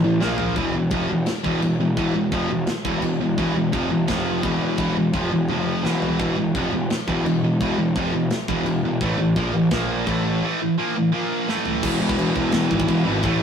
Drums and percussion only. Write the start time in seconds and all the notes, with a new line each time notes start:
0.21 snare
0.38 floor tom
0.56 kick, china
0.90 kick, china
1.26 snare, china
1.44 kick
1.62 china
1.97 kick, china
2.32 kick, china
2.67 snare, china
2.85 kick
3.02 china
3.38 kick, china
3.73 kick, china
4.08 kick, snare, china
4.43 kick, china
4.78 kick, china
5.13 kick, china
5.49 high tom
5.85 snare
6.02 floor tom
6.20 kick, china
6.55 kick, china
6.90 snare, china
7.08 kick
7.26 china
7.61 kick, china
7.96 kick, china
8.30 snare, china
8.48 kick
8.66 china
9.01 kick, china
9.36 kick, china
9.71 kick, snare, china
10.07 kick, china
11.49 snare
11.66 floor tom
11.83 kick, crash
12.09 kick
12.19 crash
12.36 kick
12.52 snare, crash
12.71 kick
12.80 kick
12.88 kick, crash
13.23 kick, crash